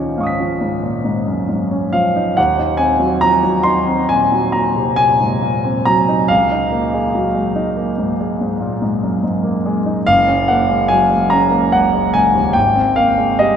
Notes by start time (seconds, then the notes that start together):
Already playing: C#2 D#3 F3 C#4 D#4 C#5
0.18 G#2 F5 C#6
0.23 D#6 B6
0.40 F3
0.61 G#2
0.83 A#2
1.04 G#2
1.27 F#2
1.48 G#2
1.71 C#4
1.93 F3 F5
2.16 D#4
2.37 D#2 F#5
2.59 D#4
2.77 C4 G#5
2.99 F#3
3.21 F3 A#5
3.43 F#3
3.63 D#4 C6
3.87 C4
4.09 A#2 G#5
4.32 F#3
4.52 A#2 A#5
4.76 C3
4.96 A#2 G#5
5.20 G#2
5.42 A#2
5.65 C4
5.86 F#3 A#5
6.09 D#4
6.28 C#2 F5
6.52 D#4
6.72 A#3
6.94 G#3
7.15 F#3
7.34 G#3
7.56 D#4
7.77 A#3
7.98 G#2
8.20 G#3
8.41 G#2
8.61 A#2
8.82 G#2
9.03 F#2
9.23 G#2
9.44 A#3
9.66 G#3
9.86 D#4
10.06 F#1 F5
10.28 C#4
10.48 A#3 F#5
10.68 G#3
10.88 F#3 G#5
11.10 G#3
11.30 C#4 A#5
11.51 A#3
11.72 C#2 F#5
11.94 G#3
12.14 C#2 G#5
12.34 D#2
12.53 G#1 G5
12.75 C4
12.96 A#3 F5
13.18 G#3
13.39 G3 D#5